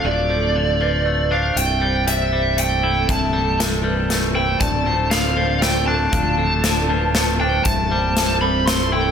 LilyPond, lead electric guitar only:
\new Staff \with { instrumentName = "Lead electric guitar" } { \time 3/4 \key c \major \tempo 4 = 118 d''2~ d''8 f''8 | g''4 e''4 g''4 | a''4 r4. g''8 | a''4 f''4 g''8 a''8~ |
a''2~ a''8 g''8 | a''4. b''8 c'''8 g''8 | }